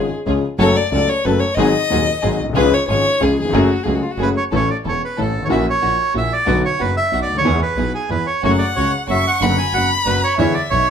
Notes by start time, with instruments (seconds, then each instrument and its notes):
Already playing: violin G#4
0.26 grand piano C#2 C#3 F3 G#3 C#4 G#4, double bass C#2, string section C#4 F4 G#4
0.58 double bass F#1, grand piano F#2 F#3 A3 C#4 A4, string section C#4 F#4 A4, violin C#5
0.76 violin D5
0.91 grand piano C#2 C#3 F#3 A3 C#4 A4, double bass C#2, string section C#4 F#4 A4, violin D5
1.09 violin C#5
1.25 double bass F#1, grand piano F#2 F#3 A3 C#4 A4, string section C#4 F#4 A4, violin B4
1.40 violin C#5
1.55 grand piano G#1 G#2 F#3 C4 D#4 G#4, double bass G#1, string section C4 F#4 G#4, violin D#5
1.90 grand piano D#1 D#2 F#3 C4 D#4 G#4, double bass D#2, string section C4 F#4 G#4
2.22 double bass G#1, grand piano G#1 G#2 F#3 C4 D#4 G#4, string section C4 F#4 G#4
2.40 grand piano A#1, double bass B1
2.49 grand piano B1 C2
2.55 double bass C#2, grand piano C#2 C#3 F3 G#3 C#4 G#4, string section C#4 F4 G#4, violin B4
2.74 violin C#5
2.88 double bass G#1, grand piano G#1 G#2 F3 G#3 C#4 G#4, string section C#4 F4 G#4, violin C#5
3.20 grand piano C#2 C#3 F3 G#3 C#4 G#4, double bass C#2, string section C#4 F4 G#4, violin G#4
3.40 grand piano D#2, violin G#4
3.45 grand piano E2
3.49 grand piano F2 F#2 F#3
3.53 double bass F#1, grand piano A3 C#4 G#4, string section A3 F#4 G#4, violin F#4
3.84 grand piano C#2 C#3 F#3 A3 C#4 G#4, double bass C#2, string section A3 F#4 G#4, violin G#4
3.95 violin F#4
4.03 violin F4
4.11 violin F#4
4.18 double bass F#1, grand piano F#2 F#3 A3 C#4 G#4, string section A3 F#4 G#4
4.22 bandoneon B4
4.37 bandoneon C#5
4.52 double bass A1, grand piano A1 A2 E3 A3 C#4 A4, string section C#4 E4 A4, bandoneon C#5
4.70 bandoneon D5
4.84 grand piano E1 E2, double bass E1, string section C#4 E4 A4
4.88 bandoneon C#5
5.05 bandoneon B4
5.17 grand piano A1 A2, double bass A1, string section C#4 E4 A4, bandoneon A4
5.35 grand piano G1, double bass G#1
5.42 grand piano G#1, bandoneon C#5
5.47 grand piano A1 A#1 A#2 E3 A#3 C#4 F#4, double bass A#1, string section A#3 E4 F#4
5.51 bandoneon E5
5.70 bandoneon C#5
5.82 grand piano A#1 A#2, double bass A#1, string section A#3 E4 F#4
6.14 grand piano A#1 A#2, double bass A#1, string section A#3 E4 F#4, bandoneon E5
6.33 bandoneon D5
6.46 grand piano B1 B2 D3 F#3 B3 F#4, double bass B1, string section B3 D4 F#4
6.65 bandoneon C#5
6.79 grand piano F#1 F#2, double bass F#1, string section B3 D4 F#4, bandoneon B4
6.97 bandoneon E5
7.12 grand piano B1 B2, double bass B1, string section B3 D4 F#4
7.22 bandoneon D5
7.29 double bass D2
7.34 grand piano C#2 D2, bandoneon C#5
7.40 grand piano D#2, double bass E2
7.45 grand piano E2 E3 G#3 B3 G#4, string section B3 E4 G#4
7.62 bandoneon B4
7.76 double bass B1, grand piano B1 B2, string section B3 E4 G#4
7.94 bandoneon G#4
8.09 double bass E2, grand piano E2 E3, string section B3 E4 G#4, bandoneon B4
8.27 bandoneon C#5
8.42 double bass F#1, grand piano F#2 C#3 F#3 A3 F#4, string section A3 C#4 F#4, bandoneon C#5, violin F#5
8.59 bandoneon D5
8.76 double bass C#2, grand piano C#2 C#3, string section A3 C#4 F#4, bandoneon C#5
9.08 double bass F#1, grand piano F#2 F#3, string section A3 C#4 F#4, bandoneon E5, violin C#6
9.27 bandoneon F#5
9.41 double bass F#1, grand piano F#2 D3 F#3 B3 F#4, string section B3 D4 F#4, bandoneon F#5, violin B5
9.58 bandoneon G#5
9.74 double bass F#1, grand piano F#2 F#3, string section B3 D4 F#4, bandoneon F#5
10.05 double bass F#1, grand piano F#2 F#3, string section B3 D4 F#4, bandoneon B4
10.24 bandoneon C#5
10.38 double bass E2, grand piano E2 D3 E3 G#3 B3 E4, string section G#3 D4 E4, bandoneon C#5, violin E5
10.54 bandoneon D5
10.70 double bass B1, grand piano B1 B2, string section G#3 D4 E4, bandoneon C#5